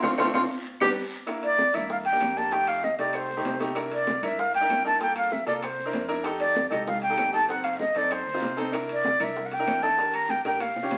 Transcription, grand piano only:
0.02 0.13 A3 medium
0.02 0.13 C4 loud
0.02 0.13 D4 loud
0.18 0.28 A3 loud
0.18 0.28 C4 loud
0.18 0.28 D4 loud
0.34 0.44 A3 medium
0.34 0.44 C4 medium
0.34 0.44 D4 loud
0.81 0.91 G3 loud
0.81 0.91 B3 loud
0.81 0.91 D4 loud
1.26 1.60 A#3 medium
1.26 1.60 D4 medium
1.26 1.60 E4 medium
1.74 2.01 A#3 medium
1.74 2.01 D4 medium
1.74 2.01 E4 medium
2.12 2.29 A#3 medium
2.12 2.29 D4 medium
2.12 2.29 G4 medium
2.36 2.47 A#3 medium
2.36 2.47 D4 medium
2.36 2.47 G4 medium
2.51 2.84 A3 medium
2.51 2.84 D#4 medium
2.51 2.85 G4 medium
2.99 3.26 A3 medium
2.99 3.26 D#4 medium
2.99 3.26 G4 medium
3.37 3.54 A3 medium
3.37 3.53 D#4 medium
3.37 3.54 G4 medium
3.59 3.71 A3 medium
3.59 3.71 D#4 medium
3.59 3.71 G4 medium
3.75 4.08 D4 medium
3.75 4.08 E4 medium
3.75 4.08 A#4 medium
4.23 4.50 D4 medium
4.23 4.50 E4 medium
4.23 4.50 A#4 medium
4.61 4.78 D4 medium
4.61 4.78 E4 medium
4.61 4.78 A#4 medium
4.85 4.96 D4 medium
4.85 4.96 E4 medium
4.85 4.96 A#4 medium
5.00 5.33 A#3 medium
5.00 5.33 F4 medium
5.00 5.33 A4 medium
5.46 5.63 A#3 medium
5.46 5.62 F4 medium
5.46 5.62 A4 medium
5.85 6.02 D4 medium
5.85 6.02 E4 medium
5.85 6.02 A#4 medium
6.08 6.20 D4 medium
6.08 6.20 E4 medium
6.08 6.20 A#4 loud
6.24 6.57 D#4 medium
6.24 6.57 G4 medium
6.24 6.57 A4 medium
6.70 6.98 D#4 medium
6.70 6.98 G4 medium
6.70 6.98 A4 medium
7.09 7.26 D#4 medium
7.09 7.27 G4 medium
7.09 7.27 A4 medium
7.32 7.44 D#4 medium
7.32 7.44 G4 medium
7.32 7.44 A4 medium
7.48 7.82 C4 medium
7.48 7.82 D#4 medium
7.48 7.82 A4 medium
7.95 8.23 C4 medium
7.95 8.23 D#4 medium
7.95 8.23 A4 medium
8.34 8.51 C4 medium
8.34 8.51 D#4 medium
8.34 8.51 F4 medium
8.57 8.68 C4 medium
8.57 8.69 D#4 medium
8.57 8.69 A4 loud
8.72 9.05 D4 medium
8.72 9.06 E4 medium
8.72 9.06 A#4 medium
9.19 9.47 D4 medium
9.19 9.47 E4 medium
9.19 9.48 A#4 medium
9.59 9.76 D4 medium
9.59 9.76 E4 medium
9.59 9.76 A#4 medium
9.83 9.94 D4 medium
9.83 9.94 E4 medium
9.83 9.94 A4 medium
9.99 10.31 D4 medium
9.99 10.31 G4 medium
9.99 10.31 A#4 medium
10.45 10.61 D4 medium
10.45 10.61 G4 medium
10.45 10.61 A#4 medium
10.83 10.98 C#4 medium
10.83 10.98 F4 medium
10.83 10.98 G4 medium

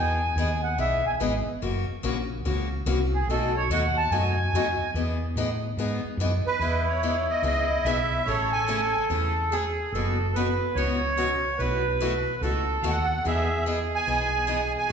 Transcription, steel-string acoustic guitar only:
0.00 0.18 E3 medium
0.00 0.19 B3 medium
0.00 0.19 D#4 medium
0.00 0.19 G#4 medium
0.38 0.49 E3 medium
0.38 0.49 B3 medium
0.38 0.50 D#4 medium
0.38 0.50 G#4 loud
0.78 1.01 E3 medium
0.78 1.01 B3 medium
0.78 1.01 D#4 medium
0.78 1.01 G#4 medium
1.20 1.32 E3 medium
1.20 1.32 B3 medium
1.20 1.33 D#4 loud
1.20 1.33 G#4 medium
1.62 1.84 C#3 medium
1.62 1.84 E3 medium
1.62 1.84 A#3 medium
1.62 1.85 C#4 medium
1.62 1.85 F#4 medium
2.03 2.15 C#3 medium
2.03 2.16 E3 loud
2.03 2.16 A#3 medium
2.03 2.16 C#4 medium
2.03 2.16 F#4 loud
2.45 2.67 C#3 medium
2.45 2.67 E3 medium
2.45 2.67 A#3 medium
2.45 2.68 C#4 medium
2.45 2.68 F#4 medium
2.86 2.98 C#3 medium
2.86 2.99 E3 medium
2.86 2.98 A#3 loud
2.86 2.99 C#4 medium
2.86 2.99 F#4 loud
3.30 3.51 B2 medium
3.30 3.51 F#3 medium
3.30 3.51 A3 medium
3.30 3.51 D#4 medium
3.30 3.52 F#4 medium
3.71 3.82 B2 medium
3.71 3.82 F#3 medium
3.71 3.82 A3 medium
3.71 3.82 D#4 loud
3.71 3.82 F#4 loud
4.12 4.34 B2 medium
4.12 4.34 F#3 medium
4.12 4.34 A3 medium
4.12 4.34 D#4 medium
4.12 4.34 F#4 medium
4.55 4.66 B2 medium
4.55 4.66 F#3 medium
4.55 4.66 A3 medium
4.55 4.66 D#4 loud
4.55 4.66 F#4 loud
4.95 5.17 E3 medium
4.95 5.17 B3 medium
4.95 5.17 D#4 medium
4.95 5.18 G#4 medium
5.37 5.48 E3 medium
5.37 5.49 B3 loud
5.37 5.48 D#4 medium
5.37 5.49 G#4 loud
5.78 6.00 E3 medium
5.78 6.00 B3 medium
5.78 6.00 D#4 medium
5.78 6.00 G#4 medium
6.20 6.31 E3 medium
6.20 6.31 B3 loud
6.20 6.32 D#4 loud
6.20 6.32 G#4 loud
6.61 6.83 E3 medium
6.61 6.83 B3 medium
6.61 6.83 D#4 medium
6.61 6.84 G#4 medium
7.03 7.14 E3 medium
7.03 7.15 B3 medium
7.03 7.15 D#4 medium
7.03 7.14 G#4 medium
7.43 7.65 E3 medium
7.43 7.66 B3 medium
7.43 7.66 D#4 medium
7.43 7.66 G#4 medium
7.86 7.97 E3 medium
7.86 7.97 B3 medium
7.86 7.98 D#4 medium
7.86 7.98 G#4 medium
8.28 8.49 C#3 medium
8.28 8.49 E3 medium
8.28 8.50 A3 medium
8.28 8.50 C#4 medium
8.28 8.50 G#4 medium
8.68 8.80 C#3 medium
8.68 8.80 E3 medium
8.68 8.80 A3 loud
8.68 8.80 C#4 medium
8.68 8.80 G#4 medium
9.10 9.32 C#3 medium
9.10 9.32 E3 medium
9.10 9.32 A3 medium
9.10 9.32 C#4 medium
9.10 9.33 G#4 medium
9.52 9.63 C#3 medium
9.52 9.63 E3 medium
9.52 9.64 A3 medium
9.52 9.64 C#4 loud
9.52 9.64 G#4 medium
9.95 10.16 B2 medium
9.95 10.16 E3 medium
9.95 10.16 B3 medium
9.95 10.16 C#4 medium
9.95 10.16 F#4 medium
10.36 10.47 B2 medium
10.36 10.47 E3 medium
10.36 10.47 B3 loud
10.36 10.47 C#4 medium
10.36 10.47 F#4 loud
10.77 10.99 B2 medium
10.77 10.99 E3 medium
10.77 10.99 B3 medium
10.77 10.99 C#4 medium
10.77 10.99 F#4 medium
11.17 11.29 B2 medium
11.17 11.29 E3 medium
11.17 11.29 B3 medium
11.17 11.29 C#4 medium
11.17 11.30 F#4 medium
11.60 11.81 B2 medium
11.60 11.81 E3 medium
11.60 11.81 A3 medium
11.60 11.82 E4 medium
11.60 11.82 F#4 medium
12.01 12.12 B2 medium
12.01 12.13 E3 medium
12.01 12.13 A3 medium
12.01 12.13 E4 medium
12.01 12.13 F#4 medium
12.43 12.64 B2 medium
12.43 12.64 E3 medium
12.43 12.65 A3 medium
12.43 12.64 E4 medium
12.43 12.65 F#4 medium
12.84 12.95 B2 medium
12.84 12.95 E3 medium
12.84 12.95 A3 medium
12.84 12.95 E4 loud
12.84 12.95 F#4 medium
13.25 13.47 E3 medium
13.25 13.47 B3 medium
13.25 13.47 D#4 medium
13.25 13.47 G#4 medium
13.66 13.78 E3 medium
13.66 13.78 B3 medium
13.66 13.78 D#4 medium
13.66 13.78 G#4 medium
14.07 14.29 E3 medium
14.07 14.29 B3 medium
14.07 14.29 D#4 medium
14.07 14.30 G#4 medium
14.47 14.59 E3 medium
14.47 14.60 B3 medium
14.47 14.60 D#4 loud
14.47 14.60 G#4 medium

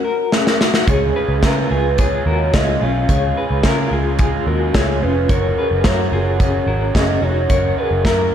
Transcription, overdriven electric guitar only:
0.87 1.43 C#3 medium
0.87 1.40 G#3 medium
0.87 1.43 C#4 medium
0.87 1.43 F4 medium
0.87 1.43 G#4 medium
1.41 1.70 G#3 soft
1.41 1.71 C#4 medium
1.41 1.71 F4 medium
1.41 1.69 G#4 medium
1.70 1.98 C#4 soft
1.70 1.98 F4 soft
1.70 1.98 G#4 soft
1.98 2.53 C#3 medium
1.98 2.52 G#3 medium
1.98 2.54 C#4 medium
1.98 2.54 F4 medium
1.98 2.54 G#4 medium
2.53 2.81 G#3 medium
2.53 2.81 C#4 medium
2.53 2.81 F4 medium
2.53 2.79 G#4 medium
2.80 3.09 C#4 soft
2.80 3.09 F4 soft
2.80 3.08 G#4 medium
3.09 3.64 C#3 medium
3.09 3.61 G#3 medium
3.09 3.64 C#4 medium
3.09 3.64 F4 medium
3.09 3.64 G#4 medium
3.62 4.18 G#3 medium
3.62 4.19 C#4 medium
3.62 4.19 F4 medium
3.62 4.19 G#4 medium
4.18 4.74 C#3 medium
4.18 4.73 G#3 medium
4.18 4.75 C#4 medium
4.18 4.74 F4 medium
4.18 4.75 G#4 medium
4.74 5.02 G#3 medium
4.74 5.02 C#4 medium
4.74 5.01 F4 medium
4.74 4.99 G#4 medium
5.01 5.28 C#4 soft
5.01 5.30 F4 soft
5.01 5.29 G#4 soft
5.28 5.84 F#2 medium
5.28 5.84 C#3 medium
5.28 5.82 F#3 medium
5.28 5.85 C#4 medium
5.28 5.85 F#4 medium
5.28 5.85 A#4 medium
5.84 6.12 F#3 soft
5.84 6.12 C#4 medium
5.84 6.13 F#4 medium
5.84 6.12 A#4 medium
6.13 6.40 F#3 soft
6.13 6.40 C#4 soft
6.13 6.41 F#4 soft
6.13 6.40 A#4 medium
6.40 6.95 F#2 medium
6.40 6.95 C#3 medium
6.40 6.94 F#3 medium
6.40 6.96 C#4 medium
6.40 6.96 F#4 medium
6.40 6.96 A#4 medium
6.95 7.23 F#3 soft
6.95 7.23 C#4 medium
6.95 7.22 F#4 medium
6.95 7.22 A#4 medium
7.23 7.51 F#3 soft
7.23 7.51 C#4 soft
7.23 7.50 F#4 soft
7.23 7.50 A#4 soft
7.51 8.05 F#2 medium
7.51 8.05 C#3 medium
7.51 8.05 F#3 medium
7.51 8.07 C#4 medium
7.51 8.06 F#4 medium
7.51 8.06 A#4 medium
8.06 8.35 F#3 medium
8.06 8.35 C#4 medium
8.06 8.35 F#4 medium
8.06 8.35 A#4 medium

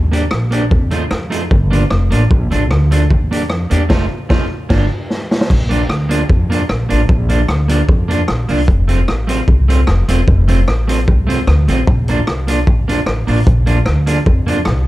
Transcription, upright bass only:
0.00 0.26 D#2 loud
0.32 0.73 A#1 loud
0.72 0.93 F2 loud
0.93 1.09 D#2 loud
1.12 1.45 F2 medium
1.51 1.85 G1 loud
1.91 2.09 F1 loud
2.12 2.28 A1 medium
2.31 2.49 A#1 loud
2.53 2.71 A1 medium
2.71 3.05 D2 medium
3.11 3.50 D#2 loud
3.50 3.68 F2 loud
3.71 3.88 E2 medium
3.91 4.05 F1 loud
4.31 4.45 F1 medium
4.70 4.84 G1 loud
5.50 5.84 A#1 loud
5.89 6.23 D2 medium
6.30 6.64 F2 loud
6.70 6.87 A#1 loud
6.91 7.07 A1 loud
7.09 7.43 A#1 loud
7.49 7.83 D2 loud
7.88 8.22 F2 loud
8.29 8.47 A#1 loud
8.50 8.66 C2 medium
8.68 9.02 F1 loud
9.09 9.43 A1 medium
9.48 9.82 C2 loud
9.88 10.06 F1 loud
10.09 10.25 E1 loud
10.28 10.62 F1 loud
10.68 11.08 A1 medium
11.08 11.42 C2 loud
11.47 11.65 D2 loud
11.68 11.84 A1 loud
11.88 12.22 A#1 loud
12.27 12.67 C2 medium
12.67 13.01 A#1 loud
13.06 13.24 A1 loud
13.28 13.44 A1 medium
13.47 13.81 A#1 loud
13.88 14.21 D2 medium
14.27 14.68 F2 loud
14.66 14.84 C2 loud

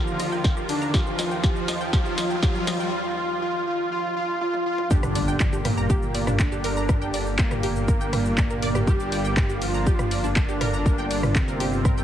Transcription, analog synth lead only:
0.00 0.69 F4 loud
0.69 0.92 D4 medium
0.94 1.42 F4 loud
1.43 1.91 F4 loud
1.93 2.41 F4 loud
2.43 2.90 F4 loud
2.92 3.15 F4 loud
3.17 3.40 F4 loud
3.42 3.65 F4 loud
3.67 3.90 F4 loud
3.92 4.14 F4 loud
4.16 4.39 F4 loud
4.41 4.64 F4 loud
4.66 4.89 F4 loud
4.91 5.55 D4 loud
5.65 6.41 A#3 loud
6.39 7.29 D4 loud
7.39 8.89 A#3 loud
8.87 9.63 G4 loud
9.62 10.26 F4 loud
10.36 11.37 D4 loud
11.35 12.04 C4 loud

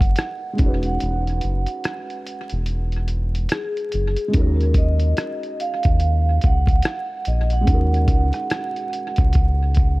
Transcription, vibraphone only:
0.00 0.84 F#5 medium
0.85 2.47 F#5 medium
3.52 4.31 G#4 medium
4.36 4.78 A#4 medium
4.78 5.63 D#5 loud
5.61 6.46 F5 loud
6.44 7.23 F#5 loud
7.28 7.53 D#5 medium
7.53 9.98 F#5 medium

